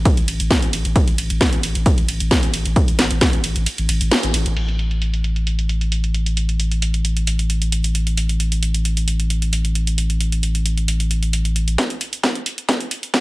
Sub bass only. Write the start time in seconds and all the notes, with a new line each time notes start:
0.17 A1
0.28 A1
0.40 A1
0.62 A1
0.73 A1
0.85 A1
1.08 A1
1.18 A1
1.30 A1
1.53 A1
1.63 A1
1.75 A1
1.98 A1
2.08 A1
2.20 A1
2.43 A1
2.54 A1
2.65 A1
2.88 A1
2.99 A1
3.11 A1
3.33 A1
3.44 A1
3.56 A1
3.78 A1
3.89 A1
4.01 A1
4.23 A1
4.34 A1
4.46 A1
4.57 A1